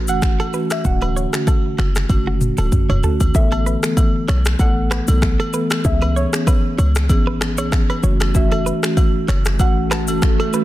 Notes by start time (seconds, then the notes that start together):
0.08 F#1 E3 A3 C#4 F#4 F#5, high agogo, shaker
0.22 finger snap, kick, cross-stick, shaker
0.40 A4, high agogo
0.53 E3 A3 C#4 F#4 B4, shaker
0.70 E5, finger snap, cross-stick, high agogo, shaker
0.84 D1 D3 A3 C#4 F#4 F#5, kick, shaker
1.02 B4, high agogo
1.16 C#5, shaker
1.33 D3 A3 C#4 F#4, finger snap, cross-stick, shaker
1.47 A4, kick, high agogo, low woodblock, shaker
1.78 F#1 F#4, finger snap, cross-stick, high agogo, shaker
1.96 finger snap, cross-stick, shaker
2.09 F#1 D3 A3 C#4 F#4, kick, high tom, high agogo, shaker
2.27 F#4
2.41 mid tom, shaker
2.58 D1 D3 A3 C#4 F#4 A4, high agogo, shaker
2.72 kick, mid tom, shaker
2.89 E1 C#5, mid tom, high agogo
3.03 D3 A3 C#4 F#4 A4, floor tom, shaker
3.20 G#1, floor tom, high agogo, shaker
3.34 A1 E3 A3 B3 A4 E5, kick, shaker
3.52 A4, high agogo
3.66 B4, shaker
3.83 E3 A3 B3 A4, finger snap, cross-stick, shaker
3.97 kick, high agogo, low woodblock, shaker
4.28 B1 C#5, finger snap, cross-stick, high agogo, shaker
4.45 finger snap, cross-stick, shaker
4.59 A1 E3 A3 B3 A4 F#5, kick, high agogo, shaker
4.91 B4, finger snap, cross-stick, shaker
5.08 B1 E3 A3 B3 A4, high agogo, shaker
5.22 finger snap, kick, cross-stick, low woodblock, shaker
5.40 A4, high agogo
5.53 E3 A3 B3 A4 B4, shaker
5.70 finger snap, cross-stick, high agogo, shaker
5.84 C#2 E3 B3 C#4 G#4 E5, kick, shaker
6.02 B4, high agogo
6.16 C#5, shaker
6.33 E3 B3 C#4 G#4, finger snap, cross-stick, shaker
6.47 B4, kick, high agogo, low woodblock, shaker
6.78 C#2 C#5, high agogo, shaker
6.96 finger snap, cross-stick, shaker
7.09 G#1 E3 B3 C#4 G#4, kick, high agogo, shaker
7.27 B4
7.41 finger snap, cross-stick, shaker
7.58 B1 E3 B3 C#4 G#4 C#5, high agogo, shaker
7.72 finger snap, kick, cross-stick, low woodblock, shaker
7.90 B4, high agogo
8.03 F#1 E3 A3 C#4 F#4 C#5, shaker
8.20 finger snap, cross-stick, high agogo, shaker
8.34 E3 A3 C#4 F#4 E5, kick, swell, shaker
8.52 A4, high agogo
8.66 B4, shaker
8.83 E3 A3 C#4 F#4, finger snap, cross-stick, shaker
8.97 kick, high agogo, low woodblock, shaker
9.28 F#1 C#5, finger snap, cross-stick, high agogo, shaker
9.45 finger snap, cross-stick, shaker
9.59 A1 E3 A3 C#4 F#4 F#5, kick, high agogo, shaker
9.91 B4 A5, finger snap, cross-stick, shaker
10.08 F#1 E3 A3 C#4 F#4, high agogo, shaker
10.22 finger snap, kick, cross-stick, low woodblock, shaker
10.40 A4, high agogo
10.53 E3 A3 C#4 F#4 B4, shaker